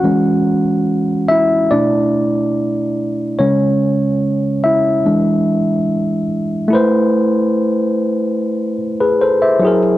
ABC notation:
X:1
M:4/4
L:1/16
Q:1/4=72
K:Emix
V:1 name="Tine electric piano"
[Ff]6 [Ee]2 [Dd]8 | c6 [Ee]8 z2 | [K:Alyd] z8 z3 [GB] [A=c] [ce]2 z |]
V:2 name="Tine electric piano"
[E,G,C]8 [B,,A,E]8 | [C,G,C]8 [E,G,D]2 z6 | [K:Alyd] [A,EB=c]12- [A,EBc]2 [F,EG^A]2 |]